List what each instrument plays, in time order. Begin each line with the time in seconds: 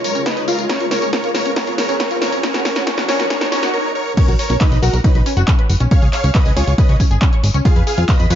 Already playing: ambient pad C#3 G#3 F4 C#5, riser
0.04 supersaw synth A#4 C#5, open hi-hat, tambourine
0.15 synth pluck C#4, closed hi-hat, tambourine
0.26 supersaw synth D#4 B4, synth pluck B4, kick, snare, closed hi-hat, tambourine
0.37 synth pluck D#5, closed hi-hat, tambourine
0.48 synth pluck F4, supersaw synth F4 A#4, open hi-hat, tambourine
0.59 closed hi-hat, tambourine
0.69 ambient pad F2 F3 G#4 B4, synth pluck C#4, supersaw synth A#4 C#5, kick, snare, closed hi-hat, tambourine
0.80 synth pluck F4, closed hi-hat, tambourine
0.91 supersaw synth A#4 C#5, snare, open hi-hat, tambourine
1.02 synth pluck C#4, closed hi-hat, tambourine
1.13 synth pluck C#4, supersaw synth A#4 C#5, kick, snare, closed hi-hat, tambourine
1.24 synth pluck F4, closed hi-hat, tambourine
1.35 supersaw synth A#4 C#5, snare, open hi-hat, tambourine
1.46 synth pluck C#4, closed hi-hat, tambourine
1.56 synth pluck C#4, supersaw synth A#4 C#5, kick, snare, closed hi-hat, tambourine
1.67 synth pluck F4, closed hi-hat, tambourine
1.78 supersaw synth A#4 C#5, snare, open hi-hat, tambourine
1.89 synth pluck C#4, closed hi-hat, tambourine
2.00 synth pluck C#4, supersaw synth A#4 C#5, kick, snare, closed hi-hat, tambourine
2.11 synth pluck F4, closed hi-hat, tambourine
2.22 supersaw synth A#4 C#5, snare, open hi-hat, tambourine
2.32 synth pluck C#4, closed hi-hat, tambourine
2.43 ambient pad D#2 D#3 F#4 A#4, synth pluck C#4, supersaw synth A#4 C#5, kick, snare, closed hi-hat, tambourine
2.54 synth pluck F#4, snare, closed hi-hat, tambourine
2.65 synth pluck C#4, supersaw synth A#4 C#5, kick, snare, open hi-hat, tambourine
2.76 synth pluck F#4, snare, closed hi-hat, tambourine
2.87 synth pluck C#4, supersaw synth A#4 C#5, kick, snare, closed hi-hat, tambourine
2.98 synth pluck F#4, snare, open hi-hat, tambourine
3.08 synth pluck C#4, supersaw synth A#4 C#5, snare, open hi-hat, tambourine
3.19 synth pluck F#4, snare, closed hi-hat, tambourine
3.30 synth pluck C#4, supersaw synth A#4 C#5, kick, snare, closed hi-hat, tambourine
3.41 synth pluck F#4, snare, closed hi-hat
3.52 synth pluck C#4, supersaw synth A#4 C#5, snare, open hi-hat, tambourine
3.63 synth pluck F#4, snare, closed hi-hat, tambourine
3.74 supersaw synth A#4 C#5
3.95 supersaw synth A#4 C#5
4.17 synth pluck C#4, supersaw synth A#4 C#5, kick, closed hi-hat, crash, tambourine
4.28 analog synth bass B1, synth pluck F#4, closed hi-hat, tambourine
4.39 supersaw synth A#4 C#5, open hi-hat, tambourine
4.50 analog synth bass B1, synth pluck C#4, closed hi-hat, tambourine
4.61 supersaw synth D#4 B4, synth pluck B4, kick, clap, closed hi-hat, tambourine
4.72 analog synth bass B1, synth pluck D#5, closed hi-hat, tambourine
4.82 analog synth bass B1, supersaw synth F#4 A#4, synth pluck F#4, open hi-hat, tambourine
4.93 analog synth bass B1, closed hi-hat, tambourine
5.04 synth pluck C#4, supersaw synth D#4 B4, kick, closed hi-hat, tambourine
5.15 analog synth bass B1, synth pluck B4, closed hi-hat
5.26 synth pluck C#4, open hi-hat, tambourine
5.37 analog synth bass F#1, synth pluck F#4, closed hi-hat, tambourine
5.48 synth pluck C#4, kick, clap, closed hi-hat, tambourine
5.59 synth pluck B4, closed hi-hat
5.69 analog synth bass F#1, open hi-hat, tambourine
5.80 analog synth bass B1, synth pluck C#4, closed hi-hat, tambourine
5.91 synth pluck C#4, supersaw synth C#5 F5, kick, closed hi-hat, tambourine
6.02 analog synth bass C#2, synth pluck G#4, closed hi-hat, tambourine
6.13 supersaw synth C#5 F5, clap, open hi-hat, tambourine
6.24 analog synth bass C#2, synth pluck C#4, closed hi-hat, tambourine
6.35 supersaw synth B4 D#5, synth pluck C#5, kick, clap, closed hi-hat, tambourine
6.46 analog synth bass C#2, synth pluck G#5, open hi-hat, tambourine
6.56 analog synth bass C#2, supersaw synth F4 C#5, synth pluck G#4, open hi-hat, tambourine
6.67 analog synth bass C#2, closed hi-hat, tambourine
6.78 synth pluck C#4, supersaw synth B4 D#5, kick, closed hi-hat, tambourine
6.89 analog synth bass C#2, synth pluck C#5, closed hi-hat
7.00 synth pluck C#4, kick, open hi-hat, tambourine
7.11 analog synth bass G#1, synth pluck G#4, closed hi-hat, tambourine
7.22 synth pluck C#4, kick, clap, closed hi-hat, tambourine
7.33 synth pluck C#5, closed hi-hat
7.43 analog synth bass G#1, open hi-hat, tambourine
7.54 analog synth bass C#2, synth pluck C#4, closed hi-hat, tambourine
7.65 synth pluck F4, supersaw synth G#4 F5, kick, closed hi-hat, tambourine
7.76 analog synth bass F2, synth pluck B4, closed hi-hat, tambourine
7.87 supersaw synth G#4 F5, open hi-hat, tambourine
7.98 analog synth bass F2, synth pluck F4, closed hi-hat, tambourine
8.09 supersaw synth B4 D#5, synth pluck F5, kick, clap, closed hi-hat, tambourine
8.19 analog synth bass F2, synth pluck B5, closed hi-hat, tambourine
8.30 analog synth bass F2, supersaw synth F4 C#5, synth pluck B4, open hi-hat, tambourine